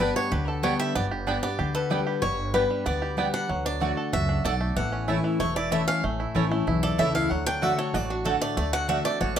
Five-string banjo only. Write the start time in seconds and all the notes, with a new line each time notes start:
Already playing: B3
0.00 D4
0.16 B3
0.32 G4
0.48 A4
0.64 B3
0.80 G4
0.95 B3
1.11 G4
1.27 D4
1.43 B3
1.59 G4
1.75 A4
1.91 B3
2.07 G4
2.22 G3
2.54 G4
2.70 G3
2.86 B3
3.02 G4
3.18 B3
3.34 D4
3.49 F#3
3.66 D4
3.82 F#4
3.97 A4
4.13 F#4
4.29 D4
4.45 A4
4.61 A3
4.76 E3
4.92 C#4
5.08 E4
5.24 E3
5.40 A3
5.56 E4
5.72 A3
5.88 C#4
6.04 A3
6.20 E4
6.36 C#4
6.52 A3
6.68 E4
6.83 A4
6.99 A3
7.15 E4
7.31 F#3
7.47 D4
7.62 F#4
7.78 A4
7.94 F#4
8.10 D4
8.26 A4
8.41 A3
8.57 A3
8.73 F#4
8.89 D4
9.05 A3
9.21 F#4